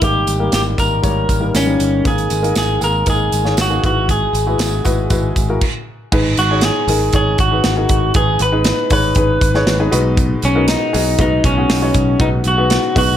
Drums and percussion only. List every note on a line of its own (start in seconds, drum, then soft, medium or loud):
0.02 kick loud
0.02 closed hi-hat medium
0.02 tambourine soft
0.27 closed hi-hat medium
0.27 tambourine soft
0.52 snare loud
0.52 closed hi-hat medium
0.52 tambourine medium
0.78 kick medium
0.78 closed hi-hat medium
0.78 tambourine soft
1.03 kick medium
1.03 closed hi-hat medium
1.03 tambourine soft
1.29 kick medium
1.29 closed hi-hat medium
1.29 tambourine soft
1.55 snare medium
1.55 closed hi-hat medium
1.55 tambourine medium
1.80 closed hi-hat medium
2.05 kick loud
2.05 closed hi-hat medium
2.05 tambourine soft
2.18 closed hi-hat medium
2.30 closed hi-hat medium
2.30 tambourine soft
2.44 closed hi-hat soft
2.55 snare medium
2.55 closed hi-hat medium
2.55 tambourine medium
2.81 closed hi-hat medium
2.81 tambourine soft
3.06 kick medium
3.06 closed hi-hat medium
3.06 tambourine soft
3.32 closed hi-hat medium
3.32 tambourine soft
3.46 snare soft
3.57 snare loud
3.57 closed hi-hat medium
3.57 tambourine medium
3.84 kick medium
3.84 closed hi-hat medium
4.09 kick medium
4.09 closed hi-hat medium
4.09 tambourine soft
4.34 closed hi-hat medium
4.34 tambourine soft
4.59 snare loud
4.59 closed hi-hat medium
4.59 tambourine medium
4.85 kick medium
4.85 closed hi-hat medium
4.85 tambourine medium
5.10 kick medium
5.10 closed hi-hat medium
5.10 tambourine soft
5.36 kick medium
5.36 closed hi-hat medium
5.36 tambourine soft
5.61 kick medium
5.61 crash medium
6.12 kick loud
6.12 crash medium
6.37 hi-hat pedal medium
6.37 open hi-hat medium
6.61 snare loud
6.61 hi-hat pedal medium
6.61 open hi-hat loud
6.88 hi-hat pedal medium
6.88 open hi-hat medium
7.13 kick medium
7.13 hi-hat pedal medium
7.13 open hi-hat medium
7.38 kick medium
7.38 hi-hat pedal medium
7.38 open hi-hat medium
7.64 snare loud
7.64 hi-hat pedal medium
7.64 open hi-hat medium
7.89 kick medium
7.89 hi-hat pedal medium
7.89 open hi-hat medium
8.14 kick loud
8.14 hi-hat pedal medium
8.14 open hi-hat medium
8.39 hi-hat pedal medium
8.39 open hi-hat medium
8.64 snare loud
8.64 hi-hat pedal medium
8.64 open hi-hat loud
8.90 kick medium
8.90 hi-hat pedal medium
8.90 open hi-hat medium
9.15 kick medium
9.15 hi-hat pedal medium
9.15 open hi-hat medium
9.41 kick loud
9.41 hi-hat pedal medium
9.41 open hi-hat medium
9.54 snare soft
9.67 snare loud
9.67 hi-hat pedal medium
9.67 open hi-hat medium
9.93 hi-hat pedal medium
9.93 open hi-hat medium
10.17 kick loud
10.17 hi-hat pedal medium
10.17 open hi-hat medium
10.42 hi-hat pedal medium
10.42 open hi-hat medium
10.68 snare loud
10.68 hi-hat pedal medium
10.68 open hi-hat loud
10.94 hi-hat pedal medium
10.94 open hi-hat medium
11.18 kick medium
11.18 hi-hat pedal medium
11.18 open hi-hat medium
11.44 kick loud
11.44 hi-hat pedal medium
11.44 open hi-hat medium
11.70 snare loud
11.70 hi-hat pedal medium
11.70 open hi-hat loud
11.94 kick loud
11.94 hi-hat pedal medium
11.94 open hi-hat medium
12.20 kick loud
12.20 hi-hat pedal medium
12.20 open hi-hat medium
12.44 hi-hat pedal medium
12.44 open hi-hat medium
12.70 snare loud
12.70 hi-hat pedal medium
12.70 open hi-hat loud
12.96 kick medium
12.96 hi-hat pedal medium
12.96 open hi-hat medium